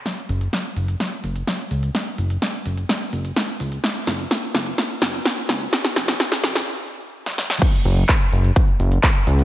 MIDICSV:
0, 0, Header, 1, 3, 480
1, 0, Start_track
1, 0, Tempo, 472441
1, 59, Time_signature, 4, 2, 24, 8
1, 9591, End_track
2, 0, Start_track
2, 0, Title_t, "Analog synth bass"
2, 0, Program_c, 0, 38
2, 298, Note_on_c, 0, 30, 106
2, 490, Note_off_c, 0, 30, 0
2, 778, Note_on_c, 0, 30, 92
2, 971, Note_off_c, 0, 30, 0
2, 1258, Note_on_c, 0, 30, 100
2, 1451, Note_off_c, 0, 30, 0
2, 1738, Note_on_c, 0, 37, 88
2, 1931, Note_off_c, 0, 37, 0
2, 2218, Note_on_c, 0, 30, 103
2, 2410, Note_off_c, 0, 30, 0
2, 2699, Note_on_c, 0, 30, 94
2, 2891, Note_off_c, 0, 30, 0
2, 3179, Note_on_c, 0, 30, 103
2, 3371, Note_off_c, 0, 30, 0
2, 3659, Note_on_c, 0, 37, 89
2, 3851, Note_off_c, 0, 37, 0
2, 4139, Note_on_c, 0, 30, 108
2, 4331, Note_off_c, 0, 30, 0
2, 4618, Note_on_c, 0, 30, 101
2, 4811, Note_off_c, 0, 30, 0
2, 5097, Note_on_c, 0, 30, 105
2, 5290, Note_off_c, 0, 30, 0
2, 5578, Note_on_c, 0, 37, 95
2, 5771, Note_off_c, 0, 37, 0
2, 6057, Note_on_c, 0, 30, 103
2, 6250, Note_off_c, 0, 30, 0
2, 6538, Note_on_c, 0, 30, 96
2, 6730, Note_off_c, 0, 30, 0
2, 7978, Note_on_c, 0, 30, 103
2, 8171, Note_off_c, 0, 30, 0
2, 8459, Note_on_c, 0, 30, 93
2, 8651, Note_off_c, 0, 30, 0
2, 8939, Note_on_c, 0, 30, 101
2, 9131, Note_off_c, 0, 30, 0
2, 9419, Note_on_c, 0, 37, 95
2, 9591, Note_off_c, 0, 37, 0
2, 9591, End_track
3, 0, Start_track
3, 0, Title_t, "Drums"
3, 58, Note_on_c, 9, 38, 46
3, 58, Note_on_c, 9, 42, 54
3, 160, Note_off_c, 9, 38, 0
3, 160, Note_off_c, 9, 42, 0
3, 179, Note_on_c, 9, 42, 26
3, 280, Note_off_c, 9, 42, 0
3, 299, Note_on_c, 9, 46, 101
3, 400, Note_off_c, 9, 46, 0
3, 419, Note_on_c, 9, 42, 55
3, 520, Note_off_c, 9, 42, 0
3, 539, Note_on_c, 9, 38, 50
3, 539, Note_on_c, 9, 42, 52
3, 640, Note_off_c, 9, 38, 0
3, 640, Note_off_c, 9, 42, 0
3, 659, Note_on_c, 9, 42, 28
3, 760, Note_off_c, 9, 42, 0
3, 778, Note_on_c, 9, 46, 106
3, 880, Note_off_c, 9, 46, 0
3, 898, Note_on_c, 9, 42, 53
3, 1000, Note_off_c, 9, 42, 0
3, 1018, Note_on_c, 9, 38, 48
3, 1018, Note_on_c, 9, 42, 50
3, 1120, Note_off_c, 9, 38, 0
3, 1120, Note_off_c, 9, 42, 0
3, 1138, Note_on_c, 9, 42, 27
3, 1240, Note_off_c, 9, 42, 0
3, 1258, Note_on_c, 9, 46, 110
3, 1360, Note_off_c, 9, 46, 0
3, 1378, Note_on_c, 9, 42, 55
3, 1480, Note_off_c, 9, 42, 0
3, 1498, Note_on_c, 9, 38, 51
3, 1498, Note_on_c, 9, 42, 52
3, 1600, Note_off_c, 9, 38, 0
3, 1600, Note_off_c, 9, 42, 0
3, 1619, Note_on_c, 9, 42, 26
3, 1720, Note_off_c, 9, 42, 0
3, 1738, Note_on_c, 9, 46, 104
3, 1840, Note_off_c, 9, 46, 0
3, 1859, Note_on_c, 9, 42, 55
3, 1960, Note_off_c, 9, 42, 0
3, 1979, Note_on_c, 9, 38, 61
3, 1979, Note_on_c, 9, 42, 53
3, 2080, Note_off_c, 9, 38, 0
3, 2080, Note_off_c, 9, 42, 0
3, 2099, Note_on_c, 9, 42, 25
3, 2201, Note_off_c, 9, 42, 0
3, 2219, Note_on_c, 9, 46, 105
3, 2321, Note_off_c, 9, 46, 0
3, 2339, Note_on_c, 9, 42, 54
3, 2441, Note_off_c, 9, 42, 0
3, 2459, Note_on_c, 9, 38, 58
3, 2459, Note_on_c, 9, 42, 50
3, 2561, Note_off_c, 9, 38, 0
3, 2561, Note_off_c, 9, 42, 0
3, 2580, Note_on_c, 9, 42, 26
3, 2681, Note_off_c, 9, 42, 0
3, 2699, Note_on_c, 9, 46, 113
3, 2801, Note_off_c, 9, 46, 0
3, 2820, Note_on_c, 9, 42, 54
3, 2921, Note_off_c, 9, 42, 0
3, 2940, Note_on_c, 9, 38, 58
3, 2940, Note_on_c, 9, 42, 52
3, 3041, Note_off_c, 9, 38, 0
3, 3041, Note_off_c, 9, 42, 0
3, 3060, Note_on_c, 9, 42, 27
3, 3161, Note_off_c, 9, 42, 0
3, 3180, Note_on_c, 9, 46, 109
3, 3281, Note_off_c, 9, 46, 0
3, 3299, Note_on_c, 9, 42, 55
3, 3401, Note_off_c, 9, 42, 0
3, 3419, Note_on_c, 9, 38, 67
3, 3419, Note_on_c, 9, 42, 51
3, 3520, Note_off_c, 9, 38, 0
3, 3520, Note_off_c, 9, 42, 0
3, 3539, Note_on_c, 9, 42, 26
3, 3641, Note_off_c, 9, 42, 0
3, 3659, Note_on_c, 9, 46, 115
3, 3760, Note_off_c, 9, 46, 0
3, 3779, Note_on_c, 9, 42, 56
3, 3880, Note_off_c, 9, 42, 0
3, 3898, Note_on_c, 9, 38, 76
3, 3898, Note_on_c, 9, 42, 53
3, 4000, Note_off_c, 9, 38, 0
3, 4000, Note_off_c, 9, 42, 0
3, 4019, Note_on_c, 9, 42, 26
3, 4121, Note_off_c, 9, 42, 0
3, 4138, Note_on_c, 9, 38, 72
3, 4138, Note_on_c, 9, 46, 110
3, 4240, Note_off_c, 9, 38, 0
3, 4240, Note_off_c, 9, 46, 0
3, 4259, Note_on_c, 9, 42, 53
3, 4360, Note_off_c, 9, 42, 0
3, 4379, Note_on_c, 9, 38, 73
3, 4379, Note_on_c, 9, 42, 49
3, 4480, Note_off_c, 9, 38, 0
3, 4480, Note_off_c, 9, 42, 0
3, 4499, Note_on_c, 9, 42, 26
3, 4600, Note_off_c, 9, 42, 0
3, 4618, Note_on_c, 9, 38, 82
3, 4618, Note_on_c, 9, 46, 108
3, 4720, Note_off_c, 9, 38, 0
3, 4720, Note_off_c, 9, 46, 0
3, 4738, Note_on_c, 9, 42, 52
3, 4840, Note_off_c, 9, 42, 0
3, 4859, Note_on_c, 9, 38, 80
3, 4859, Note_on_c, 9, 42, 48
3, 4960, Note_off_c, 9, 38, 0
3, 4960, Note_off_c, 9, 42, 0
3, 4979, Note_on_c, 9, 42, 25
3, 5081, Note_off_c, 9, 42, 0
3, 5098, Note_on_c, 9, 38, 90
3, 5098, Note_on_c, 9, 46, 114
3, 5200, Note_off_c, 9, 38, 0
3, 5200, Note_off_c, 9, 46, 0
3, 5219, Note_on_c, 9, 42, 52
3, 5321, Note_off_c, 9, 42, 0
3, 5339, Note_on_c, 9, 38, 83
3, 5339, Note_on_c, 9, 42, 51
3, 5441, Note_off_c, 9, 38, 0
3, 5441, Note_off_c, 9, 42, 0
3, 5459, Note_on_c, 9, 42, 26
3, 5560, Note_off_c, 9, 42, 0
3, 5578, Note_on_c, 9, 38, 91
3, 5578, Note_on_c, 9, 46, 114
3, 5680, Note_off_c, 9, 38, 0
3, 5680, Note_off_c, 9, 46, 0
3, 5699, Note_on_c, 9, 42, 54
3, 5800, Note_off_c, 9, 42, 0
3, 5819, Note_on_c, 9, 38, 93
3, 5819, Note_on_c, 9, 42, 53
3, 5921, Note_off_c, 9, 38, 0
3, 5921, Note_off_c, 9, 42, 0
3, 5939, Note_on_c, 9, 38, 82
3, 5939, Note_on_c, 9, 42, 24
3, 6041, Note_off_c, 9, 38, 0
3, 6041, Note_off_c, 9, 42, 0
3, 6059, Note_on_c, 9, 38, 93
3, 6059, Note_on_c, 9, 46, 109
3, 6160, Note_off_c, 9, 38, 0
3, 6160, Note_off_c, 9, 46, 0
3, 6179, Note_on_c, 9, 38, 84
3, 6179, Note_on_c, 9, 42, 48
3, 6281, Note_off_c, 9, 38, 0
3, 6281, Note_off_c, 9, 42, 0
3, 6299, Note_on_c, 9, 38, 92
3, 6299, Note_on_c, 9, 42, 48
3, 6401, Note_off_c, 9, 38, 0
3, 6401, Note_off_c, 9, 42, 0
3, 6419, Note_on_c, 9, 38, 85
3, 6419, Note_on_c, 9, 42, 25
3, 6521, Note_off_c, 9, 38, 0
3, 6521, Note_off_c, 9, 42, 0
3, 6539, Note_on_c, 9, 38, 98
3, 6539, Note_on_c, 9, 46, 109
3, 6641, Note_off_c, 9, 38, 0
3, 6641, Note_off_c, 9, 46, 0
3, 6660, Note_on_c, 9, 38, 92
3, 6660, Note_on_c, 9, 42, 52
3, 6761, Note_off_c, 9, 38, 0
3, 6761, Note_off_c, 9, 42, 0
3, 7380, Note_on_c, 9, 38, 52
3, 7481, Note_off_c, 9, 38, 0
3, 7500, Note_on_c, 9, 38, 80
3, 7602, Note_off_c, 9, 38, 0
3, 7620, Note_on_c, 9, 38, 85
3, 7721, Note_off_c, 9, 38, 0
3, 7739, Note_on_c, 9, 36, 112
3, 7740, Note_on_c, 9, 42, 55
3, 7740, Note_on_c, 9, 49, 106
3, 7841, Note_off_c, 9, 36, 0
3, 7841, Note_off_c, 9, 42, 0
3, 7841, Note_off_c, 9, 49, 0
3, 7859, Note_on_c, 9, 42, 26
3, 7961, Note_off_c, 9, 42, 0
3, 7979, Note_on_c, 9, 46, 102
3, 8081, Note_off_c, 9, 46, 0
3, 8099, Note_on_c, 9, 42, 54
3, 8201, Note_off_c, 9, 42, 0
3, 8218, Note_on_c, 9, 39, 117
3, 8219, Note_on_c, 9, 36, 124
3, 8220, Note_on_c, 9, 42, 53
3, 8320, Note_off_c, 9, 39, 0
3, 8321, Note_off_c, 9, 36, 0
3, 8321, Note_off_c, 9, 42, 0
3, 8340, Note_on_c, 9, 42, 28
3, 8441, Note_off_c, 9, 42, 0
3, 8460, Note_on_c, 9, 46, 108
3, 8561, Note_off_c, 9, 46, 0
3, 8580, Note_on_c, 9, 42, 55
3, 8681, Note_off_c, 9, 42, 0
3, 8699, Note_on_c, 9, 36, 122
3, 8700, Note_on_c, 9, 42, 55
3, 8800, Note_off_c, 9, 36, 0
3, 8801, Note_off_c, 9, 42, 0
3, 8820, Note_on_c, 9, 42, 28
3, 8922, Note_off_c, 9, 42, 0
3, 8940, Note_on_c, 9, 46, 109
3, 9042, Note_off_c, 9, 46, 0
3, 9060, Note_on_c, 9, 42, 56
3, 9162, Note_off_c, 9, 42, 0
3, 9179, Note_on_c, 9, 36, 122
3, 9179, Note_on_c, 9, 39, 118
3, 9180, Note_on_c, 9, 42, 53
3, 9281, Note_off_c, 9, 36, 0
3, 9281, Note_off_c, 9, 39, 0
3, 9282, Note_off_c, 9, 42, 0
3, 9300, Note_on_c, 9, 42, 27
3, 9402, Note_off_c, 9, 42, 0
3, 9419, Note_on_c, 9, 46, 108
3, 9521, Note_off_c, 9, 46, 0
3, 9539, Note_on_c, 9, 42, 57
3, 9591, Note_off_c, 9, 42, 0
3, 9591, End_track
0, 0, End_of_file